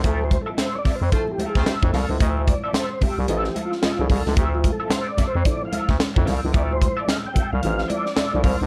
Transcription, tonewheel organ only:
0, 0, Header, 1, 2, 480
1, 0, Start_track
1, 0, Key_signature, -1, "minor"
1, 0, Tempo, 542005
1, 35, Time_signature, 4, 2, 24, 8
1, 7674, End_track
2, 0, Start_track
2, 0, Title_t, "Tonewheel organ"
2, 0, Program_c, 0, 16
2, 61, Note_on_c, 0, 69, 92
2, 211, Note_on_c, 0, 72, 100
2, 213, Note_off_c, 0, 69, 0
2, 368, Note_off_c, 0, 72, 0
2, 376, Note_on_c, 0, 69, 96
2, 443, Note_off_c, 0, 69, 0
2, 525, Note_on_c, 0, 72, 89
2, 666, Note_on_c, 0, 73, 74
2, 668, Note_off_c, 0, 72, 0
2, 684, Note_off_c, 0, 73, 0
2, 695, Note_on_c, 0, 74, 95
2, 847, Note_on_c, 0, 72, 82
2, 849, Note_off_c, 0, 74, 0
2, 990, Note_off_c, 0, 72, 0
2, 1003, Note_on_c, 0, 69, 109
2, 1163, Note_off_c, 0, 69, 0
2, 1164, Note_on_c, 0, 67, 92
2, 1308, Note_off_c, 0, 67, 0
2, 1325, Note_on_c, 0, 68, 95
2, 1484, Note_off_c, 0, 68, 0
2, 1486, Note_on_c, 0, 67, 79
2, 1555, Note_off_c, 0, 67, 0
2, 1640, Note_on_c, 0, 69, 75
2, 1860, Note_off_c, 0, 69, 0
2, 2193, Note_on_c, 0, 74, 90
2, 2431, Note_on_c, 0, 72, 89
2, 2440, Note_off_c, 0, 74, 0
2, 2679, Note_off_c, 0, 72, 0
2, 2683, Note_on_c, 0, 67, 75
2, 2913, Note_on_c, 0, 69, 88
2, 2925, Note_off_c, 0, 67, 0
2, 3062, Note_off_c, 0, 69, 0
2, 3080, Note_on_c, 0, 67, 85
2, 3151, Note_off_c, 0, 67, 0
2, 3232, Note_on_c, 0, 65, 80
2, 3549, Note_on_c, 0, 68, 85
2, 3562, Note_off_c, 0, 65, 0
2, 3700, Note_off_c, 0, 68, 0
2, 3700, Note_on_c, 0, 69, 89
2, 3855, Note_off_c, 0, 69, 0
2, 3867, Note_on_c, 0, 67, 90
2, 3941, Note_off_c, 0, 67, 0
2, 4027, Note_on_c, 0, 65, 84
2, 4178, Note_off_c, 0, 65, 0
2, 4182, Note_on_c, 0, 69, 99
2, 4352, Note_off_c, 0, 69, 0
2, 4352, Note_on_c, 0, 72, 97
2, 4501, Note_on_c, 0, 74, 95
2, 4502, Note_off_c, 0, 72, 0
2, 4655, Note_off_c, 0, 74, 0
2, 4670, Note_on_c, 0, 72, 100
2, 4834, Note_on_c, 0, 74, 108
2, 4836, Note_off_c, 0, 72, 0
2, 4983, Note_off_c, 0, 74, 0
2, 5004, Note_on_c, 0, 77, 105
2, 5222, Note_off_c, 0, 77, 0
2, 5810, Note_on_c, 0, 74, 109
2, 5871, Note_off_c, 0, 74, 0
2, 5957, Note_on_c, 0, 72, 97
2, 6192, Note_on_c, 0, 74, 83
2, 6194, Note_off_c, 0, 72, 0
2, 6283, Note_off_c, 0, 74, 0
2, 6288, Note_on_c, 0, 77, 103
2, 6349, Note_off_c, 0, 77, 0
2, 6431, Note_on_c, 0, 79, 103
2, 6648, Note_off_c, 0, 79, 0
2, 6665, Note_on_c, 0, 77, 104
2, 6974, Note_off_c, 0, 77, 0
2, 6996, Note_on_c, 0, 74, 103
2, 7468, Note_on_c, 0, 72, 96
2, 7489, Note_off_c, 0, 74, 0
2, 7674, Note_off_c, 0, 72, 0
2, 7674, End_track
0, 0, End_of_file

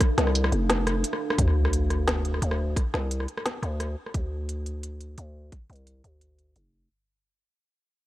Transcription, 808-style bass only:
0, 0, Header, 1, 2, 480
1, 0, Start_track
1, 0, Key_signature, -1, "minor"
1, 0, Tempo, 344828
1, 6, Time_signature, 4, 2, 24, 8
1, 11222, End_track
2, 0, Start_track
2, 0, Title_t, "808-style bass"
2, 0, Program_c, 0, 38
2, 247, Note_on_c, 0, 36, 101
2, 708, Note_off_c, 0, 36, 0
2, 726, Note_on_c, 0, 29, 98
2, 1446, Note_off_c, 0, 29, 0
2, 1927, Note_on_c, 0, 38, 97
2, 3348, Note_off_c, 0, 38, 0
2, 3369, Note_on_c, 0, 38, 94
2, 3829, Note_off_c, 0, 38, 0
2, 4090, Note_on_c, 0, 36, 92
2, 4550, Note_off_c, 0, 36, 0
2, 5047, Note_on_c, 0, 38, 97
2, 5508, Note_off_c, 0, 38, 0
2, 5769, Note_on_c, 0, 38, 97
2, 7189, Note_off_c, 0, 38, 0
2, 7208, Note_on_c, 0, 38, 91
2, 7669, Note_off_c, 0, 38, 0
2, 7930, Note_on_c, 0, 36, 96
2, 8389, Note_off_c, 0, 36, 0
2, 8410, Note_on_c, 0, 38, 89
2, 9109, Note_off_c, 0, 38, 0
2, 9131, Note_on_c, 0, 29, 90
2, 9590, Note_off_c, 0, 29, 0
2, 11222, End_track
0, 0, End_of_file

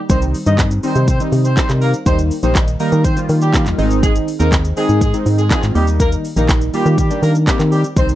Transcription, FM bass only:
0, 0, Header, 1, 2, 480
1, 0, Start_track
1, 0, Key_signature, -3, "major"
1, 0, Tempo, 491803
1, 94, Time_signature, 4, 2, 24, 8
1, 7955, End_track
2, 0, Start_track
2, 0, Title_t, "FM bass"
2, 0, Program_c, 0, 39
2, 94, Note_on_c, 0, 36, 100
2, 335, Note_off_c, 0, 36, 0
2, 454, Note_on_c, 0, 43, 104
2, 775, Note_off_c, 0, 43, 0
2, 934, Note_on_c, 0, 48, 95
2, 1175, Note_off_c, 0, 48, 0
2, 1291, Note_on_c, 0, 48, 98
2, 1533, Note_off_c, 0, 48, 0
2, 1654, Note_on_c, 0, 48, 84
2, 1895, Note_off_c, 0, 48, 0
2, 2012, Note_on_c, 0, 39, 105
2, 2253, Note_off_c, 0, 39, 0
2, 2373, Note_on_c, 0, 34, 103
2, 2694, Note_off_c, 0, 34, 0
2, 2854, Note_on_c, 0, 51, 94
2, 3094, Note_off_c, 0, 51, 0
2, 3215, Note_on_c, 0, 51, 106
2, 3576, Note_on_c, 0, 39, 86
2, 3590, Note_off_c, 0, 51, 0
2, 3655, Note_off_c, 0, 39, 0
2, 3694, Note_on_c, 0, 32, 108
2, 4095, Note_off_c, 0, 32, 0
2, 4294, Note_on_c, 0, 39, 105
2, 4615, Note_off_c, 0, 39, 0
2, 4774, Note_on_c, 0, 44, 91
2, 5015, Note_off_c, 0, 44, 0
2, 5134, Note_on_c, 0, 44, 103
2, 5375, Note_off_c, 0, 44, 0
2, 5496, Note_on_c, 0, 44, 89
2, 5575, Note_off_c, 0, 44, 0
2, 5614, Note_on_c, 0, 39, 109
2, 6015, Note_off_c, 0, 39, 0
2, 6212, Note_on_c, 0, 34, 104
2, 6534, Note_off_c, 0, 34, 0
2, 6694, Note_on_c, 0, 51, 94
2, 6934, Note_off_c, 0, 51, 0
2, 7052, Note_on_c, 0, 51, 98
2, 7293, Note_off_c, 0, 51, 0
2, 7413, Note_on_c, 0, 51, 91
2, 7654, Note_off_c, 0, 51, 0
2, 7774, Note_on_c, 0, 36, 102
2, 7955, Note_off_c, 0, 36, 0
2, 7955, End_track
0, 0, End_of_file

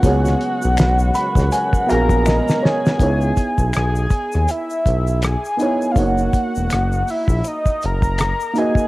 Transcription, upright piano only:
0, 0, Header, 1, 2, 480
1, 0, Start_track
1, 0, Tempo, 740741
1, 20, Time_signature, 4, 2, 24, 8
1, 5752, End_track
2, 0, Start_track
2, 0, Title_t, "Upright piano"
2, 0, Program_c, 0, 0
2, 0, Control_c, 0, 64, 127
2, 9, Note_on_c, 0, 59, 74
2, 19, Note_on_c, 0, 66, 69
2, 28, Control_c, 0, 64, 0
2, 29, Note_on_c, 0, 68, 73
2, 40, Note_on_c, 0, 73, 82
2, 138, Control_c, 0, 64, 127
2, 742, Note_on_c, 0, 83, 77
2, 774, Note_off_c, 0, 59, 0
2, 779, Note_off_c, 0, 66, 0
2, 784, Note_off_c, 0, 68, 0
2, 790, Note_off_c, 0, 73, 0
2, 964, Note_off_c, 0, 83, 0
2, 985, Note_on_c, 0, 80, 73
2, 1206, Note_off_c, 0, 80, 0
2, 1209, Note_on_c, 0, 59, 81
2, 1220, Note_on_c, 0, 66, 75
2, 1224, Note_on_c, 0, 77, 64
2, 1229, Note_on_c, 0, 68, 80
2, 1240, Note_on_c, 0, 70, 92
2, 1445, Note_off_c, 0, 77, 0
2, 1461, Note_on_c, 0, 75, 76
2, 1684, Note_off_c, 0, 75, 0
2, 1702, Note_on_c, 0, 73, 73
2, 1793, Note_off_c, 0, 59, 0
2, 1799, Note_off_c, 0, 66, 0
2, 1804, Note_off_c, 0, 68, 0
2, 1809, Note_off_c, 0, 70, 0
2, 1924, Note_off_c, 0, 73, 0
2, 1929, Note_on_c, 0, 59, 65
2, 1940, Note_on_c, 0, 63, 60
2, 1950, Control_c, 0, 64, 0
2, 1951, Note_on_c, 0, 64, 59
2, 1961, Note_on_c, 0, 73, 72
2, 2077, Control_c, 0, 64, 127
2, 2694, Note_off_c, 0, 59, 0
2, 2700, Note_off_c, 0, 63, 0
2, 2705, Note_off_c, 0, 64, 0
2, 2710, Note_off_c, 0, 73, 0
2, 3609, Note_on_c, 0, 59, 66
2, 3621, Note_on_c, 0, 63, 64
2, 3632, Note_on_c, 0, 64, 63
2, 3642, Note_on_c, 0, 73, 72
2, 3811, Note_off_c, 0, 59, 0
2, 3817, Note_off_c, 0, 63, 0
2, 3823, Note_off_c, 0, 64, 0
2, 3828, Note_off_c, 0, 73, 0
2, 3848, Note_on_c, 0, 58, 69
2, 3858, Note_on_c, 0, 63, 60
2, 3868, Control_c, 0, 64, 0
2, 3870, Note_on_c, 0, 66, 59
2, 3880, Note_on_c, 0, 73, 73
2, 3970, Control_c, 0, 64, 127
2, 4614, Note_off_c, 0, 58, 0
2, 4619, Note_off_c, 0, 63, 0
2, 4625, Note_off_c, 0, 66, 0
2, 4630, Note_off_c, 0, 73, 0
2, 5530, Note_on_c, 0, 58, 74
2, 5541, Note_on_c, 0, 63, 63
2, 5551, Note_on_c, 0, 66, 69
2, 5562, Note_on_c, 0, 75, 82
2, 5731, Note_off_c, 0, 58, 0
2, 5737, Note_off_c, 0, 63, 0
2, 5742, Note_off_c, 0, 66, 0
2, 5747, Note_off_c, 0, 75, 0
2, 5752, End_track
0, 0, End_of_file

